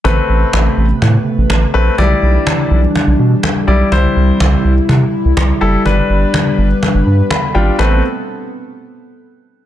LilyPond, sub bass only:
\new Staff \with { instrumentName = "Sub bass" } { \clef bass \time 4/4 \key a \minor \tempo 4 = 124 a,,8 a,,8 a,,8 a,,8 a,8 r16 a,,16 a,,8 bes,,8 | b,,8 b,,8 r8 b,,8 r16 b,,16 b,8 r8 b,,8 | c,8 c,8 c,8 c,8 c8 r16 c,16 c,8 fis,,8 | g,,8 g,,8 r8 g,,8 r16 g,,16 g,8 r8 gis,,8 |
a,,8 r2. r8 | }